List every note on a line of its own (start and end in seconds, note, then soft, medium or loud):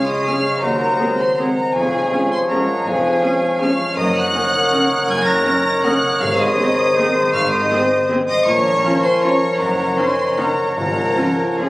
0.00 0.64 C#3 medium
0.00 0.34 G#3 soft
0.00 0.60 G#3 medium
0.00 0.42 C#4 soft
0.00 0.14 G#4 medium
0.00 1.45 G#4 medium
0.00 0.23 C#5 soft
0.00 0.64 C#5 medium
0.00 3.86 G#5 medium
0.04 0.26 D#5 medium
0.04 0.25 C6 medium
0.04 0.63 C#6 soft
0.04 0.26 D#6 medium
0.15 0.98 G#4 soft
0.24 0.40 G#3 soft
0.24 0.34 C#4 soft
0.24 0.40 C#4 soft
0.24 0.34 G#4 soft
0.24 0.62 F5 medium
0.24 0.63 C#6 medium
0.24 0.62 F6 medium
0.35 0.52 G#3 soft
0.44 0.63 C#4 soft
0.53 1.46 G#3 soft
0.61 0.93 D#2 medium
0.61 1.76 D#3 medium
0.61 1.47 F#3 medium
0.61 1.19 A#4 medium
0.61 1.49 C5 medium
0.61 1.17 F#5 medium
0.61 1.18 A#5 medium
0.72 1.56 D#4 soft
0.80 1.76 F#4 soft
0.90 1.37 C5 soft
1.00 1.14 G#3 soft
1.00 1.08 C4 soft
1.00 1.14 C4 soft
1.00 1.28 G#4 soft
1.00 1.08 G#4 soft
1.10 1.76 F#5 soft
1.18 1.39 C5 medium
1.18 1.24 G#5 medium
1.18 1.38 C6 medium
1.18 1.76 C6 medium
1.29 2.09 G#4 soft
1.37 1.53 G#3 soft
1.37 1.47 C4 soft
1.37 1.53 C4 soft
1.37 1.47 G#4 soft
1.37 1.75 A#4 medium
1.37 1.76 C5 soft
1.37 1.77 F#5 medium
1.37 1.74 A#5 medium
1.47 1.65 G#3 soft
1.57 1.76 D#4 soft
1.66 2.58 G#3 soft
1.74 2.05 F1 medium
1.74 2.05 F2 medium
1.74 2.84 F2 medium
1.74 3.93 F3 medium
1.74 3.93 G#4 medium
1.74 2.30 G#4 medium
1.74 3.93 C#5 medium
1.74 2.31 F5 medium
1.74 2.30 G#5 medium
1.84 2.67 F3 soft
1.92 3.02 F4 medium
2.02 2.48 C#5 medium
2.11 2.26 G#3 soft
2.11 2.20 C#4 medium
2.11 2.26 C#4 soft
2.11 2.39 G#4 medium
2.11 2.20 G#4 soft
2.21 3.31 F5 medium
2.30 2.39 C5 medium
2.30 2.38 G#5 medium
2.30 2.39 C6 medium
2.30 3.41 C#6 medium
2.40 3.21 G#4 soft
2.49 2.63 G#3 medium
2.49 2.58 C#4 medium
2.49 2.63 C#4 soft
2.49 2.58 G#4 soft
2.49 2.85 A#4 medium
2.49 3.11 C#5 soft
2.49 2.87 F#5 medium
2.49 2.85 A#5 medium
2.59 2.75 G#3 soft
2.68 2.93 F3 soft
2.76 3.69 G#3 soft
2.86 3.16 F1 medium
2.86 3.98 F2 medium
2.86 3.16 F2 medium
2.86 3.59 G#4 medium
2.86 3.61 F5 medium
2.86 3.61 G#5 medium
2.94 3.77 F3 soft
3.03 3.98 F4 medium
3.12 3.59 C#5 soft
3.21 3.35 G#3 soft
3.21 3.35 C#4 soft
3.21 3.31 C#4 medium
3.21 3.50 G#4 medium
3.21 3.31 G#4 medium
3.32 3.98 F5 medium
3.42 4.52 C#6 medium
3.51 3.98 G#4 medium
3.59 3.73 G#3 medium
3.59 3.72 C#4 medium
3.59 3.68 C#4 medium
3.59 3.68 G#4 medium
3.59 4.23 C#5 soft
3.59 3.96 F5 medium
3.59 3.99 C#6 medium
3.59 3.97 F6 medium
3.70 3.86 G#3 medium
3.78 3.98 F3 soft
3.87 3.98 G#3 medium
3.96 4.27 F#1 medium
3.96 4.27 F#2 medium
3.96 5.07 F#2 medium
3.96 6.16 D#3 medium
3.96 6.17 A#4 medium
3.96 6.98 C#5 medium
3.96 4.15 D#5 loud
3.96 4.14 A#5 medium
3.96 4.14 D#6 medium
4.05 4.90 C#3 soft
4.14 5.25 D#4 medium
4.14 5.09 F#5 medium
4.14 5.07 D#6 medium
4.14 5.09 F#6 loud
4.24 4.72 C#5 medium
4.34 4.48 D#3 medium
4.34 4.42 C#4 medium
4.34 4.48 C#4 medium
4.34 4.42 A#4 medium
4.34 4.62 A#4 medium
4.43 5.53 D#5 medium
4.53 5.64 C#6 medium
4.63 5.44 A#4 medium
4.72 4.85 D#3 medium
4.72 4.80 C#4 medium
4.72 4.85 C#4 medium
4.72 4.80 A#4 medium
4.72 5.35 C#5 medium
4.83 4.98 A#3 medium
4.91 5.16 C#3 medium
5.00 5.92 A#3 medium
5.08 5.39 F#1 medium
5.08 6.21 F#2 medium
5.08 5.39 F#2 medium
5.08 5.27 G#5 loud
5.08 5.28 F6 medium
5.08 5.27 G#6 loud
5.17 6.01 C#3 medium
5.26 8.47 D#4 medium
5.26 5.83 A#5 medium
5.26 5.64 F#6 medium
5.26 5.84 A#6 loud
5.36 5.83 C#5 medium
5.45 5.59 D#3 medium
5.45 5.59 C#4 medium
5.45 5.53 C#4 medium
5.45 5.53 A#4 medium
5.45 5.73 A#4 medium
5.54 8.47 D#5 medium
5.65 6.22 C#6 medium
5.75 6.22 A#4 medium
5.82 5.96 D#3 medium
5.82 5.96 C#4 medium
5.82 5.92 C#4 medium
5.82 5.92 A#4 medium
5.82 6.21 F#5 medium
5.82 6.22 D#6 medium
5.82 6.20 F#6 loud
5.93 6.10 A#3 medium
6.03 6.22 C#3 medium
6.11 6.21 A#3 medium
6.20 6.51 G#1 medium
6.20 6.51 G#2 loud
6.20 7.32 G#2 medium
6.20 6.73 G#2 medium
6.20 8.16 D#3 medium
6.20 8.17 G#4 medium
6.20 6.38 F5 loud
6.20 6.38 C#6 loud
6.20 6.38 F6 medium
6.28 7.15 D#3 medium
6.37 6.56 G#4 medium
6.37 7.34 D#5 medium
6.37 7.34 C6 medium
6.37 7.33 D#6 loud
6.47 6.96 C5 medium
6.57 6.72 D#3 medium
6.57 6.72 C4 medium
6.57 6.66 C4 medium
6.57 6.66 G#4 medium
6.68 7.79 G#5 medium
6.77 7.89 C6 medium
6.87 7.50 G#4 medium
6.96 7.10 D#3 medium
6.96 7.05 C4 medium
6.96 7.10 C4 medium
6.96 7.05 G#4 medium
6.96 8.20 C5 medium
6.96 7.59 C5 medium
7.07 7.24 G#3 medium
7.17 7.40 D#3 medium
7.25 8.17 G#3 medium
7.32 7.64 G#1 medium
7.32 7.64 G#2 medium
7.32 8.47 G#2 medium
7.32 7.40 F5 loud
7.32 7.54 C#6 loud
7.32 7.51 F6 loud
7.42 8.27 D#3 medium
7.50 7.68 G#4 medium
7.50 8.09 D#5 medium
7.50 8.10 C6 medium
7.50 8.07 D#6 medium
7.60 8.08 C5 medium
7.70 7.84 D#3 medium
7.70 7.84 C4 medium
7.70 7.78 C4 medium
7.70 7.99 G#4 medium
7.70 7.79 G#4 medium
7.81 8.47 G#5 medium
7.90 8.47 C6 medium
8.00 8.47 G#4 medium
8.09 8.23 D#3 medium
8.09 8.22 C4 medium
8.09 8.17 C4 medium
8.09 8.17 G#4 medium
8.09 8.47 C5 medium
8.19 8.35 G#3 medium
8.28 8.47 D#3 medium
8.28 8.45 D#5 medium
8.28 8.48 C6 medium
8.28 8.45 D#6 loud
8.37 8.47 G#3 medium
8.45 8.76 A#1 medium
8.45 8.76 A#2 medium
8.45 9.60 A#2 medium
8.45 9.59 F3 medium
8.45 11.62 A#4 medium
8.45 10.73 C#5 medium
8.45 9.02 C#5 loud
8.45 9.05 A#5 loud
8.45 9.03 C#6 loud
8.55 9.40 F3 medium
8.63 9.60 F4 medium
8.73 9.21 A#4 medium
8.82 8.97 F3 medium
8.82 8.92 C#4 medium
8.82 8.98 C#4 medium
8.82 8.92 F4 medium
8.82 9.11 C#5 medium
8.92 9.60 F5 medium
9.02 9.22 C5 medium
9.02 9.23 G#5 medium
9.02 10.17 A#5 medium
9.02 9.21 C6 loud
9.12 9.97 C#5 medium
9.21 9.36 F3 medium
9.21 9.30 C#4 medium
9.21 9.36 C#4 medium
9.21 9.30 F4 medium
9.21 9.86 A#4 medium
9.21 9.59 C#5 medium
9.21 9.61 A#5 medium
9.21 9.58 C#6 loud
9.32 9.49 C#4 medium
9.41 9.61 F3 soft
9.58 9.90 F#1 medium
9.58 9.90 F#2 medium
9.58 10.79 F#2 medium
9.58 10.75 D#3 medium
9.58 9.97 A#4 medium
9.58 10.00 F#5 medium
9.58 9.96 A#5 medium
9.68 10.56 C#3 soft
9.77 10.78 D#4 medium
9.87 10.36 A#4 medium
9.96 10.11 D#3 medium
9.96 10.11 C#4 soft
9.96 10.05 C#4 medium
9.96 10.05 D#4 medium
9.96 10.37 C5 medium
9.96 10.26 C#5 medium
9.96 10.39 G#5 medium
9.96 10.37 C6 medium
10.08 10.79 D#5 medium
10.27 11.16 C#5 medium
10.36 10.51 D#3 medium
10.36 10.51 C#4 medium
10.36 10.45 C#4 medium
10.36 10.45 D#4 medium
10.36 10.78 A#4 soft
10.36 10.75 A#4 medium
10.36 10.76 F#5 medium
10.36 10.74 A#5 medium
10.47 10.65 C#4 medium
10.57 10.78 C#3 soft
10.66 11.68 C#4 soft
10.75 11.10 G#1 medium
10.75 11.10 G#2 medium
10.75 11.69 G#2 medium
10.75 11.35 G#2 medium
10.75 11.69 F3 medium
10.75 11.57 A#4 medium
10.75 11.69 C#5 medium
10.75 11.59 F#5 medium
10.75 11.49 A#5 medium
10.86 11.69 G#3 soft
10.96 11.69 F4 soft
11.06 11.57 G#4 medium
11.17 11.33 F3 soft
11.17 11.25 C#4 medium
11.17 11.33 C#4 soft
11.17 11.25 F4 medium
11.17 11.47 C#5 medium
11.28 11.69 F5 medium
11.38 11.69 G#5 medium
11.48 11.69 C#5 soft
11.48 11.59 A#5 soft
11.58 11.69 F3 soft
11.58 11.66 C#4 soft
11.58 11.69 C#4 soft
11.58 11.67 F4 medium
11.58 11.69 G#4 soft
11.58 11.69 G#4 medium
11.58 11.69 F5 medium
11.58 11.69 G#5 medium